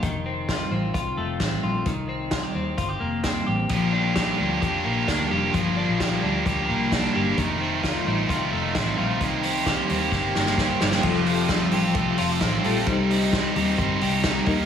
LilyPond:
<<
  \new Staff \with { instrumentName = "Reed electric piano" } { \time 4/4 \key f \mixolydian \tempo 4 = 131 r1 | r1 | r1 | r1 |
r1 | r1 | <f' g' a'>2.~ <f' g' a'>8 <f' g' a'>8 | <ees' g' c''>2.~ <ees' g' c''>8 <ees' g' bes'>8 | }
  \new Staff \with { instrumentName = "Clean electric guitar" } { \time 4/4 \key f \mixolydian ees8 c'8 f'8 c'8 f'8 a8 c'8 f'8 | ees8 c'8 f'16 g'16 c'8 f'16 g'16 bes8 c'8 g'8 | f8 d'8 g'8 d'8 g'8 bes8 d'8 g'8 | f8 d'8 g'8 d'8 g'8 bes8 d'8 g'8 |
ees8 c'8 f'8 c'8 f'8 a8 c'8 f'8 | ees8 c'8 g'8 c'8 g'8 bes8 c'8 g'8 | f8 c'8 a8 g'8 a8 f'16 g'16 c'8 a8 | g8 ees'8 c'8 g'8 c'8 g'8 ees'8 bes8 | }
  \new Staff \with { instrumentName = "Overdriven electric guitar" } { \time 4/4 \key f \mixolydian r1 | r1 | <bes, d f bes d' g'>8 <f bes d' g'>8 <f bes d' g'>8 <f bes d' g'>8 <bes, d f bes d' g'>8 <f bes d' g'>8 <f bes d' g'>8 <f bes d' g'>8 | <g, d f bes d'>8 <f bes d'>8 <d f bes d'>8 <f bes d'>8 <g, d f bes d'>8 <f bes d'>8 <d f bes d'>8 <f bes d'>8 |
<f, c ees a ees'>8 <ees a ees'>8 <c ees a ees'>8 <ees a ees'>8 <f, c ees a ees'>8 <ees a ees'>8 <c ees a ees'>8 <ees a ees'>8 | <c ees bes c' g'>8 <bes c' g'>8 <ees bes c' g'>8 <bes c' g'>8 <c ees bes c' g'>8 <bes c' g'>8 <ees bes c' g'>8 <bes c' g'>8 | <f g c' f' a'>8 <c' f' a'>8 <f g c' f' a'>8 <c' f' a'>8 <g c' f' a'>8 <c' f' a'>8 <f g c' f' a'>8 <c' f' a'>8 | <c g c' ees'>8 <g c' ees'>8 <c g c' ees'>8 <g c' ees'>8 <c g c' ees'>8 <g c' ees'>8 <c g c' ees'>8 <g bes ees'>8 | }
  \new Staff \with { instrumentName = "Fingered electric bass" } { \clef bass \time 4/4 \key f \mixolydian f,,4. a,,8 c,8 f,,8 a,,8 bes,,8 | c,4. ees,8 g,,8 f,,4 a,,8 | bes,,4. d,8 f,8 bes,,8 d,8 f,,8 | g,,8. bes,,8. d,8 d,8 c,4 g,,8 |
f,,4. a,,8 c,8 f,,8 a,,8 bes,,8 | c,4. ees,8 g,,8 g,,4 g,,8 | f,,4. a,,8 c,8 f,,8 a,,8 bes,,8 | c,4. ees,8 g,,8 c,4 ees,8 | }
  \new DrumStaff \with { instrumentName = "Drums" } \drummode { \time 4/4 <hh bd>4 <hh bd sn>4 <hh bd>4 <hh bd sn>4 | <hh bd>4 <hh bd sn>4 <hh bd>4 <hh bd sn>4 | <hh bd>4 <hh bd sn>4 <hh bd>4 <hh bd sn>4 | <hh bd>4 <hh bd sn>4 <hh bd>4 <hh bd sn>4 |
<hh bd>4 <hh bd sn>4 <hh bd>4 <hh bd sn>4 | <hh bd>8 hho8 <hh bd sn>8 hho8 <bd sn>8 sn16 sn16 <bd sn>8 sn16 sn16 | <cymc bd>8 hho8 <hh bd sn>8 hho8 <hh bd>8 hho8 <hh bd sn>8 hho8 | <hh bd>8 hho8 <bd sn>8 hho8 <hh bd>8 hho8 <hh bd sn>8 <hho bd>8 | }
>>